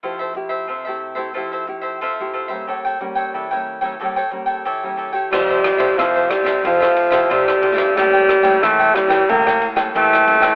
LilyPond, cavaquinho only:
\new Staff \with { instrumentName = "Cavaquinho" } { \time 4/4 \key f \major \tempo 4 = 91 <f' a' c'' e''>16 <a' c'' e''>16 r16 <a' c'' e''>16 <f' a' c'' e''>16 <a' c'' e''>8 <a' c'' e''>16 <f' a' c'' e''>16 <a' c'' e''>16 r16 <a' c'' e''>16 <f' a' c'' e''>8 <f' a' c'' e''>16 <a' c'' e''>16 | <g' a' cis'' g''>16 <a' cis'' g''>16 r16 <a' cis'' g''>16 <g' a' cis'' g''>16 <a' cis'' g''>8 <a' cis'' g''>16 <g' a' cis'' g''>16 <a' cis'' g''>16 r16 <a' cis'' g''>16 <g' a' cis'' g''>8 <g' a' cis'' g''>16 <a' cis'' g''>16 | <f' a' c'' e''>16 <a' c'' e''>16 r16 <a' c'' e''>16 <f' a' c'' e''>16 <a' c'' e''>8 <a' c'' e''>16 <f' a' c'' e''>16 <a' c'' e''>16 r16 <a' c'' e''>16 <f' a' c'' e''>8 <f' a' c'' e''>16 <a' c'' e''>16 | <g' a' cis'' g''>16 <a' cis'' g''>16 r16 <a' cis'' g''>16 <g' a' cis'' g''>16 <a' cis'' g''>8 <a' cis'' g''>16 <g' a' cis'' g''>16 <a' cis'' g''>16 r16 <a' cis'' g''>16 <g' a' cis'' g''>8 <g' a' cis'' g''>16 <a' cis'' g''>16 | }